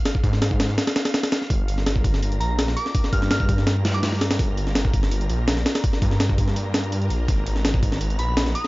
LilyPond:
<<
  \new Staff \with { instrumentName = "Synth bell" } { \time 4/4 \key g \phrygian \tempo 4 = 166 r1 | r2 r8 bes''8. r16 d'''8 | r8 f'''8 f'''16 f'''16 r4 r16 d'''8. r8 | r1 |
r1 | r2 r8 ces'''8. r16 ees'''8 | }
  \new Staff \with { instrumentName = "Synth texture" } { \time 4/4 \key g \phrygian <f'' f'''>1 | <bes'' bes'''>1~ | <bes'' bes'''>1~ | <bes'' bes'''>1~ |
<bes'' bes'''>1~ | <bes'' bes'''>1 | }
  \new Staff \with { instrumentName = "Detuned saw bass" } { \clef bass \time 4/4 \key g \phrygian r8 aes,4. r2 | g,,2~ g,,8 bes,,4 r8 | r8 g,2.~ g,8 | g,,2~ g,,8 bes,,4 r8 |
r8 g,2. bes,,8 | aes,,2~ aes,,8 bes,,4 r8 | }
  \new DrumStaff \with { instrumentName = "Drums" } \drummode { \time 4/4 <hho sn>16 bd16 <hho bd>16 sn16 <hho sn>16 bd16 <hho sn>16 sn16 <hho sn>16 <hho sn>16 <hho sn>16 <hho sn>16 <hho sn>16 <hho sn>16 <hho sn>16 sn16 | <hho bd>8 hho16 sn16 <hho sn>16 bd16 <hho bd>16 sn16 hho16 hh16 hho8 <hho sn>16 sn16 hho16 sn16 | <hho bd>16 sn16 <hho bd>16 sn16 <hho sn>16 bd16 <hho bd>16 sn16 <hho sn>8 <hho sn>16 hh16 <hho sn>16 sn16 <hho sn>16 <hho sn>16 | <hho bd>8 hho16 sn16 <hho sn>16 bd16 <hho bd>16 sn16 hho16 hh16 hho8 <hho sn>16 sn16 <hho sn>16 <hho sn>16 |
<hho bd>16 sn16 <hho bd>16 sn16 <hho sn>16 bd16 <hho bd>16 sn16 hho8 <hho sn>16 hh16 hho16 hh16 hho8 | <hho bd>8 hho16 sn16 <hho sn>16 bd16 <hho bd>16 sn16 hho16 hh16 hho8 <hho sn>16 sn16 hho8 | }
>>